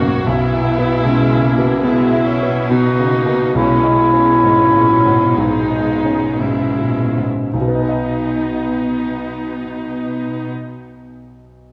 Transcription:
Already playing: grand piano B1 F#2 G#2 C#4 F#4, cello section B2, viola section A#3 F#4, clarinet C#4
0.02 grand piano F#2
0.27 grand piano B1, cello section B2, viola section B3 E4
0.53 grand piano E4
0.78 grand piano B3
1.05 grand piano B2, viola section G#3, clarinet C#4
1.31 grand piano C#3
1.44 viola section A#3
1.58 grand piano B2
1.84 viola section G#3 E4, grand piano B3, clarinet B3
2.12 grand piano E4
2.27 viola section C#4
2.43 grand piano B3
2.70 grand piano B2, viola section B3 D#4, clarinet F#4
2.99 grand piano C#3
3.13 viola section A#3
3.26 grand piano B2
3.55 grand piano B1, viola section G#3 C#4, clarinet E4
3.84 grand piano D#5
3.98 viola section C#4
4.13 grand piano C#4
4.43 grand piano G#2, viola section G#3
4.74 grand piano A#2
4.90 viola section F#3
5.05 grand piano G#2
5.37 grand piano B1, viola section G#3 D#4, clarinet D#4
5.71 grand piano D#4
6.04 grand piano C#4
6.40 grand piano G#2, viola section G#3 E4, clarinet C#4
6.79 grand piano A#2
7.17 grand piano G#2
7.53 grand piano B1, cello section B2, viola section B3 D#4, clarinet D#4
7.61 grand piano B2
7.68 grand piano B3
7.75 grand piano D#4
7.82 grand piano B4
7.89 grand piano D#5

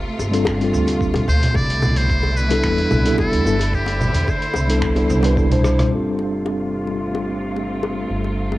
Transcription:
Already playing: string section C3 A3 F4
0.19 upright bass G1, high bongo, shaker
0.31 tine electric piano G3 C4 D4 F4 A4, closed hi-hat, shaker
0.45 finger snap, kick, high bongo, shaker
0.58 tine electric piano G3 C4 D4, closed hi-hat
0.63 tine electric piano F4 A4
0.73 upright bass D2, shaker
0.87 closed hi-hat, high bongo, shaker
1.01 kick, shaker
1.14 closed hi-hat, high bongo, low conga
1.28 upright bass D2, muted trumpet C5, shaker
1.43 closed hi-hat, low conga, shaker
1.54 upright bass C2, string section B2 D3 E4, muted trumpet D5, kick, high bongo, shaker
1.70 closed hi-hat
1.82 high bongo, low conga, shaker
1.96 muted trumpet C5, closed hi-hat, shaker
2.10 kick, shaker
2.23 high bongo
2.37 muted trumpet B4, shaker
2.49 tine electric piano G3 B3 D4 E4 A4, closed hi-hat, high bongo, shaker
2.64 upright bass E2, finger snap, kick, shaker
2.78 closed hi-hat
2.91 upright bass C2, high bongo, low conga, shaker
3.04 tine electric piano G3 B3 D4 E4 A4, closed hi-hat, shaker
3.18 muted trumpet A4, kick, high bongo, shaker
3.33 upright bass E2, closed hi-hat
3.44 upright bass G1, tine electric piano G3 B3 D4 E4 A4, shaker
3.59 closed hi-hat, high bongo, shaker
3.73 muted trumpet G4, string section C5, kick, shaker
3.86 closed hi-hat, high bongo
4.01 low conga, shaker
4.14 upright bass E2, closed hi-hat, shaker
4.28 muted trumpet C5, kick, high bongo, shaker
4.42 closed hi-hat
4.54 upright bass C2, high bongo, shaker
4.68 tine electric piano G3 B3 D4 E4 A4, closed hi-hat, shaker
4.82 finger snap, kick, shaker
4.94 tine electric piano G3 B3 D4 E4 A4, closed hi-hat, high bongo
5.10 upright bass C2, shaker
5.22 tine electric piano G3 B3 D4 E4 B4, closed hi-hat, high bongo, shaker
5.35 tine electric piano G3 B3 D4 E4 A4, kick, shaker
5.50 tine electric piano B2 G3 D4 E4 C5, closed hi-hat, low conga
5.64 cross-stick, high bongo, shaker
5.79 cross-stick, closed hi-hat, low conga, shaker
5.89 string section C3 A3 F4, tine electric piano G3 C4 D4
5.93 tine electric piano F4 A4
6.19 high bongo
6.46 high bongo
6.87 high bongo
7.15 high bongo
7.56 high bongo
7.83 high bongo
8.10 upright bass G1
8.24 high bongo
8.52 high bongo

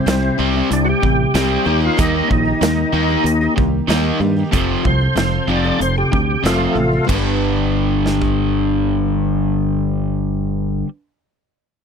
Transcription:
0.06 fingered electric bass C2, twelve-string acoustic guitar C3 G3 C4 E4 G4, overdriven electric guitar C3 G3, tonewheel organ C4, snare, closed hi-hat
0.38 fingered electric bass C2, overdriven electric guitar C3 G3 C4, twelve-string acoustic guitar G3 C4 E4 G4
0.54 twelve-string acoustic guitar C4 E4 G4
0.71 fingered electric bass C2, overdriven electric guitar C3 G3, tonewheel organ D4, closed hi-hat
0.85 twelve-string acoustic guitar C4 E4 G4, tonewheel organ F#4
0.89 tonewheel organ G4
1.02 fingered electric bass A1, overdriven electric guitar C3 G3, kick
1.34 fingered electric bass C2, twelve-string acoustic guitar C3 G3 C4 E4 G4, overdriven electric guitar C3 G3 C4, snare, closed hi-hat
1.65 fingered electric bass D#2, overdriven electric guitar D#3 A#3 D#4, twelve-string acoustic guitar G3 A#3 D#4 G4
1.81 twelve-string acoustic guitar A#3 D#4 G4
1.85 tonewheel organ F4
1.97 fingered electric bass D#2, twelve-string acoustic guitar D#3 G3 A#3 D#4 G4, overdriven electric guitar D#3 A#3 D#4, tonewheel organ D#4, kick, closed hi-hat
2.28 fingered electric bass A#1, overdriven electric guitar D#3 A#3, tonewheel organ D4, kick
2.32 tonewheel organ D#4
2.45 twelve-string acoustic guitar A#3 D#4 G4
2.61 fingered electric bass D#2, overdriven electric guitar D#3 A#3, twelve-string acoustic guitar D#3 G3 A#3 D#4 G4, snare, closed hi-hat
2.92 fingered electric bass D#2, overdriven electric guitar D#3 A#3 D#4, twelve-string acoustic guitar G3 A#3 D#4 G4
3.09 twelve-string acoustic guitar A#3 D#4 G4
3.24 fingered electric bass D#2, overdriven electric guitar D#3 A#3, closed hi-hat
3.41 twelve-string acoustic guitar A#3 D#4 G4
3.57 fingered electric bass C2, overdriven electric guitar D#3 A#3, kick
3.88 fingered electric bass D#2, overdriven electric guitar D#3 A#3 D#4, twelve-string acoustic guitar D#3 G3 A#3 D#4 G4, snare, closed hi-hat
4.20 fingered electric bass G2, overdriven electric guitar D#3 A#3, twelve-string acoustic guitar G3 A#3 D#4 G4
4.37 twelve-string acoustic guitar A#3 D#4 G4
4.52 fingered electric bass F1, overdriven electric guitar F2 C3 F3, twelve-string acoustic guitar F3 C4 F4 A4, kick, closed hi-hat
4.84 fingered electric bass C2, overdriven electric guitar F2 C3, tonewheel organ C5, kick
5.00 twelve-string acoustic guitar C4 F4 A4
5.16 fingered electric bass F1, overdriven electric guitar F2 C3, twelve-string acoustic guitar F3 C4 F4 A4, snare, closed hi-hat
5.48 fingered electric bass F1, overdriven electric guitar F2 C3 F3, twelve-string acoustic guitar F3 C4 F4 A4, tonewheel organ D5
5.64 twelve-string acoustic guitar C4 F4 A4
5.80 fingered electric bass F1, overdriven electric guitar F2 C3, tonewheel organ C5, closed hi-hat
5.96 twelve-string acoustic guitar C4 F4 A4, tonewheel organ G4
6.12 fingered electric bass D2, overdriven electric guitar F2 C3, kick
6.43 fingered electric bass F1, overdriven electric guitar F2 C3 F3, twelve-string acoustic guitar F3 C4 F4 A4, tonewheel organ A3 F4, snare, closed hi-hat
6.59 twelve-string acoustic guitar C4 F4 A4
6.75 fingered electric bass A1, overdriven electric guitar F2 C3, twelve-string acoustic guitar F3 C4 F4 A4
6.92 twelve-string acoustic guitar C4 F4 A4
7.05 twelve-string acoustic guitar G2 D3, overdriven electric guitar G2
7.09 fingered electric bass G1, overdriven electric guitar D3 G3, twelve-string acoustic guitar G3, kick, crash
7.14 twelve-string acoustic guitar B3 D4
7.18 twelve-string acoustic guitar B4
8.06 snare
8.22 kick

